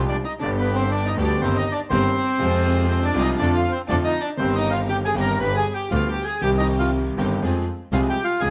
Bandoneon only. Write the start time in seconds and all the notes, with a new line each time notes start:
0.09 D4 D5
0.25 D#4 D#5
0.42 D4 D5
0.60 B3 B4
0.75 C4 C5
0.92 D4 D5
1.07 D#4 D#5
1.25 D4 D5
1.41 C4 C5
1.56 D#4 D#5
1.72 D4 D5
1.90 C4 C5
2.88 C4 C5
3.05 D4 D5
3.22 D#4 D#5
3.39 D4 D5
3.55 F4 F5
3.72 C4 C5
3.89 D4 D5
4.04 D#4 D#5
4.21 D4 D5
4.37 C4 C5
4.55 D#4 D#5
4.71 F4 F5
4.89 G4 G5
5.05 G#4 G#5
5.21 A#4 A#5
5.40 B4 B5
5.57 G#4 G#5
5.74 G4 G5
5.91 F4 F5
6.09 G4 G5
6.24 G#4 G#5
6.42 G4 G5
6.58 D#4 D#5
6.79 F4 F5
7.93 F4 F5
8.09 G4 G5
8.24 F4 F5
8.41 G#4 G#5